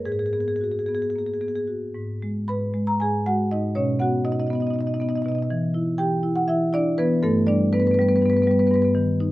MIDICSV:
0, 0, Header, 1, 2, 480
1, 0, Start_track
1, 0, Key_signature, 5, "minor"
1, 0, Tempo, 538600
1, 67, Time_signature, 7, 3, 24, 8
1, 1746, Tempo, 514139
1, 3186, Tempo, 496689
1, 8805, End_track
2, 0, Start_track
2, 0, Title_t, "Marimba"
2, 0, Program_c, 0, 12
2, 48, Note_on_c, 0, 68, 63
2, 49, Note_on_c, 0, 44, 56
2, 108, Note_off_c, 0, 68, 0
2, 108, Note_on_c, 0, 68, 49
2, 171, Note_off_c, 0, 68, 0
2, 171, Note_on_c, 0, 68, 56
2, 230, Note_off_c, 0, 68, 0
2, 230, Note_on_c, 0, 68, 53
2, 293, Note_off_c, 0, 68, 0
2, 293, Note_on_c, 0, 68, 56
2, 299, Note_on_c, 0, 59, 37
2, 360, Note_off_c, 0, 68, 0
2, 360, Note_on_c, 0, 68, 52
2, 427, Note_off_c, 0, 68, 0
2, 427, Note_on_c, 0, 68, 53
2, 499, Note_off_c, 0, 68, 0
2, 499, Note_on_c, 0, 68, 53
2, 544, Note_on_c, 0, 66, 38
2, 569, Note_off_c, 0, 68, 0
2, 569, Note_on_c, 0, 68, 52
2, 637, Note_off_c, 0, 68, 0
2, 637, Note_on_c, 0, 68, 52
2, 692, Note_off_c, 0, 59, 0
2, 704, Note_off_c, 0, 68, 0
2, 704, Note_on_c, 0, 68, 55
2, 768, Note_off_c, 0, 68, 0
2, 768, Note_on_c, 0, 68, 52
2, 789, Note_on_c, 0, 59, 42
2, 843, Note_off_c, 0, 68, 0
2, 843, Note_on_c, 0, 68, 55
2, 911, Note_off_c, 0, 68, 0
2, 911, Note_on_c, 0, 68, 48
2, 931, Note_off_c, 0, 66, 0
2, 981, Note_off_c, 0, 68, 0
2, 981, Note_on_c, 0, 68, 53
2, 1030, Note_on_c, 0, 58, 30
2, 1057, Note_off_c, 0, 68, 0
2, 1057, Note_on_c, 0, 68, 48
2, 1127, Note_off_c, 0, 68, 0
2, 1127, Note_on_c, 0, 68, 54
2, 1170, Note_off_c, 0, 59, 0
2, 1190, Note_off_c, 0, 68, 0
2, 1190, Note_on_c, 0, 68, 49
2, 1256, Note_on_c, 0, 59, 36
2, 1257, Note_off_c, 0, 68, 0
2, 1257, Note_on_c, 0, 68, 54
2, 1267, Note_off_c, 0, 58, 0
2, 1322, Note_off_c, 0, 68, 0
2, 1322, Note_on_c, 0, 68, 48
2, 1386, Note_off_c, 0, 68, 0
2, 1386, Note_on_c, 0, 68, 53
2, 1463, Note_off_c, 0, 68, 0
2, 1493, Note_on_c, 0, 66, 35
2, 1647, Note_off_c, 0, 59, 0
2, 1702, Note_off_c, 0, 44, 0
2, 1738, Note_off_c, 0, 66, 0
2, 1739, Note_on_c, 0, 44, 53
2, 1994, Note_on_c, 0, 56, 49
2, 2227, Note_off_c, 0, 44, 0
2, 2232, Note_on_c, 0, 83, 79
2, 2238, Note_on_c, 0, 44, 47
2, 2243, Note_on_c, 0, 71, 62
2, 2461, Note_off_c, 0, 56, 0
2, 2472, Note_on_c, 0, 56, 54
2, 2570, Note_off_c, 0, 71, 0
2, 2575, Note_off_c, 0, 83, 0
2, 2598, Note_on_c, 0, 82, 73
2, 2708, Note_off_c, 0, 44, 0
2, 2713, Note_off_c, 0, 82, 0
2, 2718, Note_on_c, 0, 80, 71
2, 2719, Note_on_c, 0, 44, 45
2, 2733, Note_on_c, 0, 68, 55
2, 2943, Note_off_c, 0, 68, 0
2, 2943, Note_off_c, 0, 80, 0
2, 2952, Note_off_c, 0, 56, 0
2, 2963, Note_on_c, 0, 56, 56
2, 2964, Note_on_c, 0, 78, 78
2, 2974, Note_on_c, 0, 66, 53
2, 3183, Note_off_c, 0, 66, 0
2, 3185, Note_off_c, 0, 78, 0
2, 3190, Note_off_c, 0, 44, 0
2, 3199, Note_on_c, 0, 75, 70
2, 3201, Note_on_c, 0, 44, 46
2, 3210, Note_on_c, 0, 63, 56
2, 3425, Note_off_c, 0, 56, 0
2, 3427, Note_off_c, 0, 63, 0
2, 3428, Note_off_c, 0, 75, 0
2, 3428, Note_on_c, 0, 73, 72
2, 3432, Note_off_c, 0, 44, 0
2, 3432, Note_on_c, 0, 47, 68
2, 3442, Note_on_c, 0, 61, 56
2, 3661, Note_on_c, 0, 59, 53
2, 3664, Note_off_c, 0, 61, 0
2, 3664, Note_off_c, 0, 73, 0
2, 3665, Note_on_c, 0, 78, 72
2, 3682, Note_on_c, 0, 66, 66
2, 3895, Note_off_c, 0, 47, 0
2, 3906, Note_off_c, 0, 78, 0
2, 3907, Note_off_c, 0, 66, 0
2, 3907, Note_on_c, 0, 47, 55
2, 3907, Note_on_c, 0, 75, 71
2, 3910, Note_on_c, 0, 63, 51
2, 3978, Note_off_c, 0, 75, 0
2, 3978, Note_on_c, 0, 75, 54
2, 3980, Note_off_c, 0, 63, 0
2, 3980, Note_on_c, 0, 63, 39
2, 4050, Note_off_c, 0, 75, 0
2, 4050, Note_on_c, 0, 75, 64
2, 4056, Note_off_c, 0, 63, 0
2, 4056, Note_on_c, 0, 63, 44
2, 4119, Note_off_c, 0, 75, 0
2, 4119, Note_on_c, 0, 75, 55
2, 4132, Note_off_c, 0, 63, 0
2, 4132, Note_on_c, 0, 63, 39
2, 4141, Note_off_c, 0, 59, 0
2, 4153, Note_on_c, 0, 59, 62
2, 4182, Note_off_c, 0, 75, 0
2, 4182, Note_on_c, 0, 75, 64
2, 4202, Note_off_c, 0, 63, 0
2, 4202, Note_on_c, 0, 63, 42
2, 4251, Note_off_c, 0, 75, 0
2, 4251, Note_on_c, 0, 75, 57
2, 4270, Note_off_c, 0, 63, 0
2, 4270, Note_on_c, 0, 63, 42
2, 4314, Note_off_c, 0, 75, 0
2, 4314, Note_on_c, 0, 75, 61
2, 4347, Note_off_c, 0, 63, 0
2, 4347, Note_on_c, 0, 63, 46
2, 4379, Note_off_c, 0, 75, 0
2, 4379, Note_on_c, 0, 75, 55
2, 4385, Note_off_c, 0, 47, 0
2, 4397, Note_on_c, 0, 47, 45
2, 4430, Note_off_c, 0, 63, 0
2, 4430, Note_on_c, 0, 63, 42
2, 4447, Note_off_c, 0, 75, 0
2, 4447, Note_on_c, 0, 75, 60
2, 4506, Note_off_c, 0, 63, 0
2, 4506, Note_on_c, 0, 63, 43
2, 4511, Note_off_c, 0, 75, 0
2, 4511, Note_on_c, 0, 75, 54
2, 4575, Note_off_c, 0, 63, 0
2, 4575, Note_on_c, 0, 63, 42
2, 4576, Note_off_c, 0, 75, 0
2, 4576, Note_on_c, 0, 75, 64
2, 4622, Note_off_c, 0, 59, 0
2, 4634, Note_on_c, 0, 59, 53
2, 4649, Note_off_c, 0, 75, 0
2, 4649, Note_on_c, 0, 75, 56
2, 4654, Note_off_c, 0, 63, 0
2, 4654, Note_on_c, 0, 63, 46
2, 4719, Note_off_c, 0, 75, 0
2, 4719, Note_on_c, 0, 75, 59
2, 4727, Note_off_c, 0, 63, 0
2, 4727, Note_on_c, 0, 63, 43
2, 4783, Note_off_c, 0, 75, 0
2, 4783, Note_on_c, 0, 75, 60
2, 4803, Note_off_c, 0, 63, 0
2, 4803, Note_on_c, 0, 63, 42
2, 4847, Note_off_c, 0, 75, 0
2, 4847, Note_on_c, 0, 75, 58
2, 4869, Note_off_c, 0, 47, 0
2, 4870, Note_off_c, 0, 63, 0
2, 4870, Note_on_c, 0, 63, 40
2, 4881, Note_on_c, 0, 47, 55
2, 4908, Note_off_c, 0, 75, 0
2, 4908, Note_on_c, 0, 75, 60
2, 4943, Note_off_c, 0, 63, 0
2, 4943, Note_on_c, 0, 63, 46
2, 4972, Note_off_c, 0, 75, 0
2, 4972, Note_on_c, 0, 75, 58
2, 5006, Note_off_c, 0, 63, 0
2, 5006, Note_on_c, 0, 63, 41
2, 5045, Note_off_c, 0, 75, 0
2, 5045, Note_on_c, 0, 75, 58
2, 5082, Note_off_c, 0, 75, 0
2, 5083, Note_off_c, 0, 63, 0
2, 5106, Note_off_c, 0, 59, 0
2, 5116, Note_off_c, 0, 47, 0
2, 5122, Note_on_c, 0, 52, 70
2, 5353, Note_on_c, 0, 64, 53
2, 5574, Note_off_c, 0, 52, 0
2, 5583, Note_on_c, 0, 79, 81
2, 5586, Note_on_c, 0, 52, 58
2, 5593, Note_on_c, 0, 67, 63
2, 5814, Note_off_c, 0, 64, 0
2, 5825, Note_on_c, 0, 64, 55
2, 5925, Note_off_c, 0, 67, 0
2, 5931, Note_off_c, 0, 79, 0
2, 5944, Note_on_c, 0, 78, 80
2, 6050, Note_off_c, 0, 52, 0
2, 6062, Note_on_c, 0, 52, 51
2, 6062, Note_on_c, 0, 76, 75
2, 6063, Note_off_c, 0, 64, 0
2, 6069, Note_off_c, 0, 78, 0
2, 6075, Note_on_c, 0, 64, 61
2, 6292, Note_off_c, 0, 64, 0
2, 6301, Note_off_c, 0, 76, 0
2, 6304, Note_on_c, 0, 64, 58
2, 6313, Note_on_c, 0, 74, 94
2, 6324, Note_on_c, 0, 62, 68
2, 6541, Note_off_c, 0, 52, 0
2, 6547, Note_off_c, 0, 62, 0
2, 6548, Note_off_c, 0, 74, 0
2, 6548, Note_on_c, 0, 71, 86
2, 6552, Note_on_c, 0, 52, 65
2, 6560, Note_on_c, 0, 59, 69
2, 6780, Note_off_c, 0, 64, 0
2, 6784, Note_off_c, 0, 59, 0
2, 6785, Note_off_c, 0, 71, 0
2, 6785, Note_on_c, 0, 43, 65
2, 6787, Note_on_c, 0, 69, 81
2, 6790, Note_off_c, 0, 52, 0
2, 6795, Note_on_c, 0, 57, 68
2, 7018, Note_on_c, 0, 74, 89
2, 7021, Note_off_c, 0, 57, 0
2, 7021, Note_on_c, 0, 55, 68
2, 7024, Note_off_c, 0, 69, 0
2, 7032, Note_on_c, 0, 62, 73
2, 7259, Note_off_c, 0, 62, 0
2, 7259, Note_off_c, 0, 74, 0
2, 7270, Note_off_c, 0, 43, 0
2, 7270, Note_on_c, 0, 71, 85
2, 7274, Note_on_c, 0, 59, 68
2, 7281, Note_on_c, 0, 43, 56
2, 7337, Note_off_c, 0, 71, 0
2, 7337, Note_on_c, 0, 71, 65
2, 7361, Note_off_c, 0, 59, 0
2, 7361, Note_on_c, 0, 59, 56
2, 7409, Note_off_c, 0, 71, 0
2, 7409, Note_on_c, 0, 71, 75
2, 7450, Note_off_c, 0, 59, 0
2, 7450, Note_on_c, 0, 59, 61
2, 7479, Note_off_c, 0, 71, 0
2, 7479, Note_on_c, 0, 71, 70
2, 7514, Note_off_c, 0, 55, 0
2, 7526, Note_on_c, 0, 55, 62
2, 7538, Note_off_c, 0, 59, 0
2, 7538, Note_on_c, 0, 59, 51
2, 7550, Note_off_c, 0, 71, 0
2, 7550, Note_on_c, 0, 71, 75
2, 7615, Note_off_c, 0, 71, 0
2, 7615, Note_on_c, 0, 71, 70
2, 7617, Note_off_c, 0, 59, 0
2, 7617, Note_on_c, 0, 59, 61
2, 7685, Note_off_c, 0, 71, 0
2, 7685, Note_on_c, 0, 71, 72
2, 7696, Note_off_c, 0, 59, 0
2, 7696, Note_on_c, 0, 59, 54
2, 7728, Note_off_c, 0, 43, 0
2, 7740, Note_on_c, 0, 43, 57
2, 7749, Note_off_c, 0, 71, 0
2, 7749, Note_on_c, 0, 71, 64
2, 7782, Note_off_c, 0, 59, 0
2, 7782, Note_on_c, 0, 59, 62
2, 7820, Note_off_c, 0, 71, 0
2, 7820, Note_on_c, 0, 71, 75
2, 7855, Note_off_c, 0, 59, 0
2, 7855, Note_on_c, 0, 59, 56
2, 7888, Note_off_c, 0, 71, 0
2, 7888, Note_on_c, 0, 71, 69
2, 7941, Note_off_c, 0, 59, 0
2, 7941, Note_on_c, 0, 59, 61
2, 7953, Note_off_c, 0, 71, 0
2, 7953, Note_on_c, 0, 71, 72
2, 7981, Note_off_c, 0, 55, 0
2, 7992, Note_on_c, 0, 55, 65
2, 8025, Note_off_c, 0, 59, 0
2, 8025, Note_on_c, 0, 59, 58
2, 8029, Note_off_c, 0, 71, 0
2, 8029, Note_on_c, 0, 71, 70
2, 8105, Note_off_c, 0, 71, 0
2, 8105, Note_on_c, 0, 71, 71
2, 8114, Note_off_c, 0, 59, 0
2, 8114, Note_on_c, 0, 59, 61
2, 8181, Note_off_c, 0, 71, 0
2, 8181, Note_on_c, 0, 71, 65
2, 8188, Note_off_c, 0, 59, 0
2, 8188, Note_on_c, 0, 59, 55
2, 8206, Note_off_c, 0, 43, 0
2, 8218, Note_on_c, 0, 43, 64
2, 8249, Note_off_c, 0, 71, 0
2, 8249, Note_on_c, 0, 71, 74
2, 8265, Note_off_c, 0, 59, 0
2, 8265, Note_on_c, 0, 59, 59
2, 8327, Note_off_c, 0, 71, 0
2, 8327, Note_on_c, 0, 71, 67
2, 8351, Note_off_c, 0, 59, 0
2, 8351, Note_on_c, 0, 59, 53
2, 8428, Note_off_c, 0, 71, 0
2, 8430, Note_off_c, 0, 59, 0
2, 8449, Note_on_c, 0, 51, 75
2, 8456, Note_off_c, 0, 55, 0
2, 8457, Note_off_c, 0, 43, 0
2, 8697, Note_on_c, 0, 63, 73
2, 8805, Note_off_c, 0, 51, 0
2, 8805, Note_off_c, 0, 63, 0
2, 8805, End_track
0, 0, End_of_file